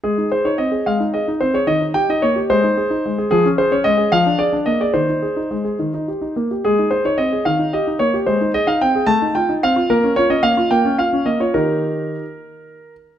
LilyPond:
\new Staff \with { instrumentName = "Grand piano" } { \time 6/8 \key aes \major \tempo 4. = 73 << { aes'8 c''16 des''16 ees''8 f''8 ees''8 c''16 des''16 | ees''8 g''16 ees''16 des''8 c''4. | aes'8 c''16 des''16 ees''8 f''8 d''8 ees''16 d''16 | c''2~ c''8 r8 |
aes'8 c''16 des''16 ees''8 f''8 ees''8 des''8 | c''8 ees''16 f''16 g''8 a''8 g''8 f''8 | bes'8 des''16 ees''16 f''8 g''8 f''8 ees''16 des''16 | bes'2~ bes'8 r8 | } \\ { aes16 ees'16 aes'16 ees'16 c'16 aes'16 aes16 ees'16 aes'16 ees'16 c'16 aes'16 | ees16 ees'16 g'16 ees'16 bes16 g'16 aes16 ees'16 aes'16 ees'16 aes16 aes'16 | f16 des'16 aes'16 des'16 aes16 aes'16 f16 d'16 aes'16 d'16 bes16 aes'16 | ees16 ees'16 aes'16 ees'16 aes16 aes'16 ees16 ees'16 g'16 ees'16 bes16 g'16 |
aes16 ees'16 aes'16 ees'16 c'16 aes'16 ees16 ees'16 g'16 ees'16 bes16 g'16 | aes16 ees'16 aes'16 ees'16 c'16 aes'16 a16 ees'16 f'16 ees'16 c'16 f'16 | bes16 des'16 f'16 des'16 bes16 f'16 bes16 des'16 f'16 des'16 bes16 f'16 | <ees ees' g'>4. r4. | } >> }